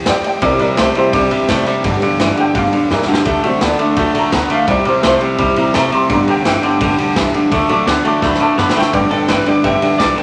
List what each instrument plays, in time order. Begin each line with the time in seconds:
0.05 upright bass E2, steel-string acoustic guitar G3 C4 E4 G4, honky-tonk piano D5 F#5, snare, ride
0.10 honky-tonk piano G5
0.24 steel-string acoustic guitar C4 E4 G4, honky-tonk piano D5 G5, muted upright bass stroke, ride
0.42 upright bass C2, steel-string acoustic guitar C3 G3 C4 E4 G4, clean electric guitar C3 G3, honky-tonk piano G3 C4 E4 A#4 D5, kick, ride
0.59 clean electric guitar C3 G3, steel-string acoustic guitar C4 E4 G4, honky-tonk piano A#4 D5, muted upright bass stroke, ride
0.77 upright bass C2, clean electric guitar C3 A3, steel-string acoustic guitar G3 G4, honky-tonk piano G4 C5, snare, ride
0.95 clean electric guitar C3 G3, honky-tonk piano G3 C4 E4 G4 C5, steel-string acoustic guitar C4 E4 G4, ride
1.13 upright bass C2, steel-string acoustic guitar C3 G3 C4 E4 G4, clean electric guitar C3 G3, honky-tonk piano D4 G4, kick, ride
1.31 clean electric guitar C3 G3, steel-string acoustic guitar C4 E4 G4, ride
1.48 upright bass E2, clean electric guitar C3 A3, steel-string acoustic guitar G3 C4 E4 G4, kick, snare, ride
1.65 clean electric guitar C3 G3, steel-string acoustic guitar C4 E4 G4, muted upright bass stroke, snare, ride
1.83 upright bass G1, steel-string acoustic guitar G2 D3 G3 B3 D4 G4, clean electric guitar G2 D3, honky-tonk piano G3 B3 D4, kick, ride
2.01 clean electric guitar G2 D3, steel-string acoustic guitar G3 B3 D4 G4, ride
2.19 upright bass G1, clean electric guitar G2 E3, steel-string acoustic guitar G3 B3 D4 G4, snare, ride
2.36 clean electric guitar G2 D3, steel-string acoustic guitar G3 B3 D4 G4, honky-tonk piano F#5, ride
2.40 honky-tonk piano G5
2.55 upright bass G1, clean electric guitar G2 D3, steel-string acoustic guitar G2 D3 G3 B3 D4 G4, honky-tonk piano G3 B3 D4 F5, kick, ride
2.72 clean electric guitar G2 D3, steel-string acoustic guitar G3 B3 D4 G4, ride
2.89 upright bass E2, clean electric guitar G2 E3, steel-string acoustic guitar G3 B3 D4 G4, snare
2.94 honky-tonk piano A#4
3.02 snare
3.07 clean electric guitar G2 D3, steel-string acoustic guitar G3 B3 D4 G4, honky-tonk piano F#4, muted upright bass stroke
3.12 honky-tonk piano G4, snare
3.25 upright bass D2, steel-string acoustic guitar D3 A3 D4 F#4 A4, clean electric guitar D3 A3, kick, ride
3.43 clean electric guitar D3 A3, honky-tonk piano F#3 A3 C4 D4, steel-string acoustic guitar D4 F#4 A4, ride
3.61 upright bass D2, clean electric guitar D3 B3, steel-string acoustic guitar A3 D4 F#4 A4, honky-tonk piano A3 D4, snare, ride
3.79 clean electric guitar D3 A3, steel-string acoustic guitar D4 F#4 A4, ride
3.96 upright bass D2, steel-string acoustic guitar D3 A3 D4 F#4 A4, clean electric guitar D3 A3, honky-tonk piano F#3 A3 D4, kick, ride
4.14 clean electric guitar D3 A3, steel-string acoustic guitar D4 F#4 A4, honky-tonk piano A5, ride
4.19 honky-tonk piano A#5
4.32 upright bass D2, clean electric guitar D3 B3, steel-string acoustic guitar A3 D4 F#4 A4, kick, snare, ride
4.50 clean electric guitar D3 A3, steel-string acoustic guitar D4 F#4 A4, honky-tonk piano F5, ride
4.67 upright bass C2, steel-string acoustic guitar C3 G3 C4 E4 G4, clean electric guitar C3 G3, honky-tonk piano G3 C4 E4 D5, kick, ride
4.85 clean electric guitar C3 G3, steel-string acoustic guitar C4 E4 G4, honky-tonk piano C5, ride
5.03 upright bass C2, clean electric guitar C3 A3, steel-string acoustic guitar G3 C4 E4 G4, honky-tonk piano C5, snare, ride
5.21 clean electric guitar C3 G3, steel-string acoustic guitar C4 E4 G4, ride
5.38 upright bass C2, steel-string acoustic guitar C3 G3 C4 E4 G4, clean electric guitar C3 G3, kick, ride
5.56 clean electric guitar C3 G3, honky-tonk piano G3 C4 E4 A#5, steel-string acoustic guitar C4 E4 G4, ride
5.73 upright bass E2, clean electric guitar C3 A3, steel-string acoustic guitar G3 C4 E4 G4, honky-tonk piano A#5, snare, ride
5.91 clean electric guitar C3 G3, steel-string acoustic guitar C4 E4 G4, honky-tonk piano C6, muted upright bass stroke, ride
6.09 upright bass G1, steel-string acoustic guitar G2 D3 G3 B3 D4 G4, clean electric guitar G2 D3, honky-tonk piano G3 B3 D4 A#5, kick, ride
6.27 clean electric guitar G2 D3, steel-string acoustic guitar G3 B3 D4 G4, honky-tonk piano G5, ride
6.45 upright bass G1, clean electric guitar G2 E3, steel-string acoustic guitar G3 B3 D4 G4, honky-tonk piano G5, snare, ride
6.63 clean electric guitar G2 D3, honky-tonk piano G3 B3 D4, steel-string acoustic guitar G3 B3 D4 G4, muted upright bass stroke, ride
6.81 upright bass G1, clean electric guitar G2 D3, steel-string acoustic guitar G2 D3 G3 B3 D4 G4, kick, ride
6.98 clean electric guitar G2 D3, steel-string acoustic guitar G3 B3 D4 G4, muted upright bass stroke, ride
7.16 upright bass B1, clean electric guitar G2 E3, steel-string acoustic guitar G3 B3 D4 G4, kick, snare, ride
7.34 clean electric guitar G2 D3, steel-string acoustic guitar G3 B3 D4 G4, muted upright bass stroke, ride
7.51 upright bass D2, steel-string acoustic guitar D3 A3 D4 F#4 A4, clean electric guitar D3 A3, kick, ride
7.69 clean electric guitar D3 A3, honky-tonk piano F#3 A3 D4 D6, steel-string acoustic guitar D4 F#4 A4, muted upright bass stroke, ride
7.86 upright bass D2, clean electric guitar D3 B3, steel-string acoustic guitar A3 D4 F#4 A4, snare, ride
8.04 clean electric guitar D3 A3, steel-string acoustic guitar D4 F#4 A4, honky-tonk piano D6, ride
8.22 upright bass D2, steel-string acoustic guitar D3 A3 D4 F#4 A4, clean electric guitar D3 A3, honky-tonk piano F#3 A3 D4 B5, kick, snare
8.34 snare
8.40 clean electric guitar D3 A3, steel-string acoustic guitar D4 F#4 A4, honky-tonk piano A5, muted upright bass stroke
8.58 upright bass F#2, clean electric guitar D3 B3, steel-string acoustic guitar A3 D4 F#4 A4, honky-tonk piano B5, snare
8.70 snare
8.75 clean electric guitar D3 A3, steel-string acoustic guitar D4 F#4 A4, honky-tonk piano G5, muted upright bass stroke
8.81 snare
8.93 upright bass G1, clean electric guitar G2 D3, steel-string acoustic guitar G2 D3 G3 B3 D4 G4, honky-tonk piano B4 D5 G5, kick, ride
9.11 clean electric guitar G2 D3 A4, steel-string acoustic guitar G3 B3 D4 G4, honky-tonk piano B4 D5 G5, ride
9.28 upright bass G1, clean electric guitar G2 E3 B4, steel-string acoustic guitar G3 B3 G4, honky-tonk piano B4 D5 G5, snare, ride
9.46 clean electric guitar G2 D3 D5, steel-string acoustic guitar G3 B3 D4 G4, honky-tonk piano B4 D5 G5, ride
9.63 upright bass G1, steel-string acoustic guitar G2 D3 G3 B3 D4 G4, clean electric guitar G2 D3 E5, honky-tonk piano B4 D5 G5, kick, ride
9.81 clean electric guitar G2 D3, steel-string acoustic guitar G3 B3 D4 G4, honky-tonk piano B4 D5 G5, ride
9.98 upright bass B1, clean electric guitar G2 E3 D5, steel-string acoustic guitar G3 B3 G4, honky-tonk piano B4 D5 A5, kick, snare, ride
10.16 clean electric guitar G2 D3 A4, steel-string acoustic guitar G3 B3 D4 G4, honky-tonk piano B4 D5 G5, ride